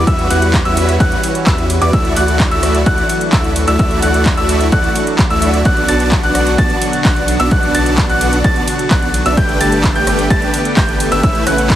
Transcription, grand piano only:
0.07 E6
0.30 F#6
0.65 E6
1.00 F#6
1.47 E6
1.82 D6
1.93 E6
2.16 F#6
2.51 E6
2.86 F#6
3.33 E6
3.68 E6
3.79 E6
4.03 F#6
4.37 E6
4.72 F#6
5.30 E6
5.65 F#6
5.89 A6
6.23 F#6
6.58 A6
7.05 F#6
7.40 E6
7.51 F#6
7.75 A6
8.09 F#6
8.44 A6
8.91 F#6
9.26 E6
9.37 G6
9.61 A6
9.96 G6
10.30 A6
10.77 G6
11.12 E6
11.23 E6
11.47 F#6

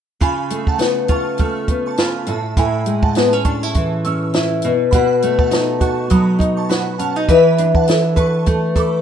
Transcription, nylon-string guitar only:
0.21 C#3 F4
0.50 A3
0.78 B3
1.09 F4
1.40 A3
1.69 B3
1.99 F4
2.27 A2
2.57 A2 E4
2.86 G#3
3.16 B3
3.33 C#4
3.45 D4
3.63 E4
3.76 E3
4.06 C#4
4.35 E4
4.65 B2
4.94 B2 F#4
5.23 A3
5.51 D#4
5.81 F#4
6.10 F#3
6.39 D#4
6.70 F#4
6.99 C#4
7.16 D#4
7.29 E3 B4
7.59 D4
7.88 A4
8.16 B4
8.47 A3
8.75 A4

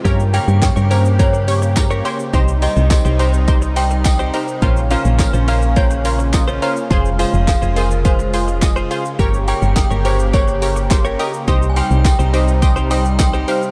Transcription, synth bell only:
0.34 G5
0.62 G5
0.91 C5
1.19 C#5
2.62 D#5
2.91 D#5
3.20 C5
3.77 G5
4.05 G5
4.34 C5
4.91 F5
5.48 F5
5.77 C#5
7.19 F5
7.48 F5
7.77 A#4
8.05 C5
9.48 G5
9.77 G5
10.05 C5
10.34 C#5
11.70 G#5
11.77 G5
12.05 G5
12.34 C5
12.91 G5
13.19 G5
13.48 C5

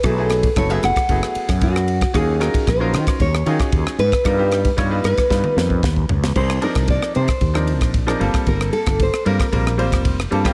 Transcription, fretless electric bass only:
0.04 B1
0.56 F#1
0.83 F#1
0.96 muted fretless electric bass stroke
1.09 F#1
1.36 muted fretless electric bass stroke
1.49 F#2
2.15 D#2
2.54 muted fretless electric bass stroke
2.67 A#1
2.93 D#3
3.20 D#2
3.46 D#3
3.60 muted fretless electric bass stroke
3.72 D#2
3.98 G#2
4.25 G2
4.78 G2
5.04 G2
5.31 G2
5.56 F2
5.83 D#2
6.09 C#2
6.36 C2
6.75 C2
7.16 C3
7.41 D#2
7.81 A#1
8.21 G1
8.34 muted fretless electric bass stroke
8.47 G1
8.87 G1
9.26 G2
9.53 A#1
9.92 F1
10.32 G2
10.45 muted fretless electric bass stroke

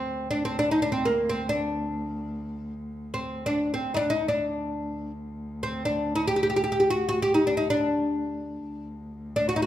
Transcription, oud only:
Already playing: C4
0.31 D4
0.45 C4
0.59 D4
0.71 D#4
0.82 D4
0.92 C4
1.05 A#3
1.29 C4
1.49 D4
3.14 C4
3.46 D4
3.74 C4
3.94 D4 D#4
4.10 D#4
4.28 D4
5.63 C4
5.85 D4
6.16 D#4
6.28 G4
6.36 G4
6.43 G4
6.50 G4
6.56 G4
6.64 G4
6.72 G4
6.80 G4
6.90 F#4
7.09 F#4
7.22 G4
7.34 D#4
7.47 D4
7.57 D#4
7.70 D4
9.36 D4
9.49 F#4
9.56 D#4
9.62 F#4

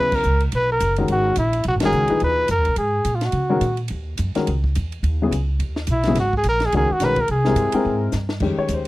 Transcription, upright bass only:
Already playing: D#2
0.25 C#2
0.53 B1
0.81 F#1
1.09 G#1
1.37 A#1
1.65 B1
1.75 G#1
1.83 F#1
1.92 C#2
2.10 muted upright bass stroke
2.22 D#2
2.49 F#2
2.58 D#2
2.67 B1
2.76 G#2
3.05 A#2
3.33 C#3
3.61 A#2
3.90 D#2
4.19 F#2
4.37 muted upright bass stroke
4.48 C#2
4.76 E2
5.03 D#2
5.31 C#2
5.59 D#2
5.88 B1
6.16 G#1
6.44 A#1
6.73 C#2
6.90 muted upright bass stroke
7.00 B1
7.29 C2
7.55 G2
7.73 muted upright bass stroke
7.85 G#2
8.13 G2
8.40 F2
8.57 muted upright bass stroke
8.69 D#2

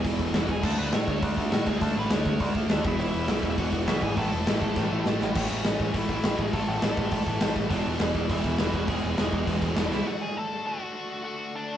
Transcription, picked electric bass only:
0.05 E1
0.19 E1
0.34 E1
0.48 E1
0.63 D2
0.78 D2
0.93 A2
1.08 D2
1.22 D2
1.37 D2
1.52 A2
1.67 D2
1.81 D2
1.96 A1
2.11 D2
2.25 D2
2.40 D2
2.55 D2
2.69 D#2
2.84 E1
2.99 E1
3.14 E1
3.29 B1
3.43 E1
3.58 E1
3.73 E1
3.88 B1
4.02 G#1
4.17 A1
4.32 E1
4.48 A1
4.62 A1
4.77 A1
4.92 A1
5.06 A1
5.21 A1
5.35 A1
5.51 A1
5.65 A1
5.80 A1
5.94 A1
6.09 A1
6.24 A1
6.39 A1
6.53 A1
6.68 A1
6.83 A1
6.97 A1
7.12 A1
7.27 A1
7.41 A1
7.56 A1
7.70 E1
7.85 E1
8.00 E1
8.15 E1
8.29 E1
8.45 E1
8.59 E1
8.73 E1
8.88 E1
9.03 E1
9.18 E1
9.33 E1
9.47 E1
9.62 E1
9.76 E1
9.91 C#2

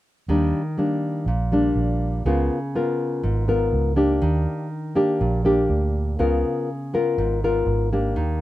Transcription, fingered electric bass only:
0.28 D#2
1.26 A#1
1.75 A#1
2.25 C#2
3.24 G#1
3.73 C#2
4.22 D#2
5.21 A#1
5.69 D2
6.19 C#2
7.18 G#1
7.66 G#1
8.16 D#2

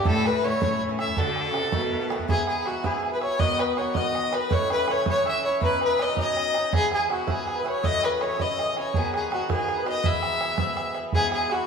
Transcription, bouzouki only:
0.04 A2 D3 A3 E4
0.13 D3 A3 E4
0.34 D3 A3 E4
0.43 A2 D3 A3 E4
0.61 A2 E3 C#4 E4
0.71 E3 C#4 E4
0.89 E3 C#4 E4
0.99 A2 E3 C#4 E4
1.17 A2 D3 A3 F#4
1.26 D3 A3 F#4
1.45 D3 A3 F#4
1.53 A2 D3 A3 F#4
1.71 B2 D#3 A3 F#4
1.81 D#3 A3 F#4
2.01 D#3 A3 F#4
2.09 B2 D#3 A3 F#4
2.28 G#2 E3 B3 E4
2.66 G#2 E3 B3 E4
2.84 G#2 E3 B3 E4
3.20 E3 B3 E4
3.39 B2 D#3 B3 F#4
3.78 B2 D#3 B3 F#4
3.95 B2 D#3 B3 F#4
4.33 D#3 B3 F#4
4.49 A2 E3 C#4 E4
4.87 A2 E3 C#4 E4
5.05 A2 E3 C#4 E4
5.43 E3 C#4 E4
5.60 B2 F#3 C#4 D#4
5.97 B2 F#3 C#4 D#4
6.17 B2 F#3 C#4 D#4
6.54 F#3 C#4 D#4
6.72 G#2 E3 B3 E4
7.09 G#2 E3 B3 E4
7.27 G#2 E3 B3 E4
7.64 E3 B3 E4
7.83 A2 E3 C#4 E4
8.21 A2 E3 C#4 E4
8.40 A2 E3 C#4 E4
8.77 E3 C#4 E4
8.95 G#2 D#3 B3 F#4
9.30 G#2 D#3 B3 F#4
9.49 G#2 D#3 B3 F#4
9.85 D#3 B3 F#4
10.03 G#2 E3 B3 E4
10.40 G#2 E3 B3 E4
10.58 G#2 E3 B3 E4
10.95 E3 B3 E4
11.14 G#2 E3 B3 E4
11.51 G#2 E3 B3 E4

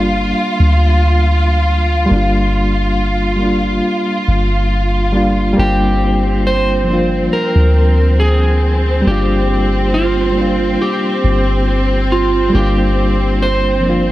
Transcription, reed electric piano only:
Already playing: G3 A#3 D4 F4
2.06 G3 A#3
2.12 D4 F4
3.36 G3 A#3
3.42 D4 F4
5.12 G3 A#3 D4
5.17 F4
5.53 G3 A#3
5.60 D4 F4
6.84 F3 A#3
6.90 D4 F4
9.01 G3 A#3
9.08 D4 F4
10.32 G3 A#3
10.38 D4 F4
12.50 G3 A#3
12.56 D4 F4
13.80 F3 A#3
13.86 D4 F4

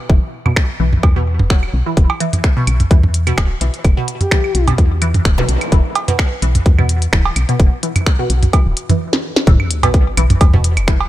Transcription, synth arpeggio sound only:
0.10 E3
0.46 B2
0.80 E3
1.16 B2
1.50 F#3
1.86 E3
2.20 E3
2.57 B2
2.91 E3
3.27 B2
3.61 E3
3.97 B2
4.31 E3
4.68 B2
5.02 E3
5.38 B2
5.72 E3
6.08 B2
6.42 E3
6.79 B2
7.13 E3
7.49 B2
7.83 E3
8.19 B2
8.53 E3
8.90 E3
9.47 E3
9.83 B2
10.17 E3
10.54 B2
10.88 E3

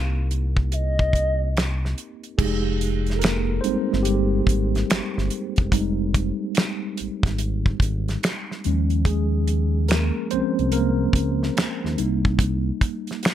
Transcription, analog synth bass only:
Already playing: C2
2.40 F1
3.67 G1
3.93 G1
4.48 G#1
4.92 G1
5.18 G1
5.59 E1
5.73 F1
7.00 G#1
7.24 G#1
7.81 G#1
8.66 D#2
10.33 C2
10.59 C2
11.14 C#2
11.58 D#2
11.85 D#2
12.00 C2

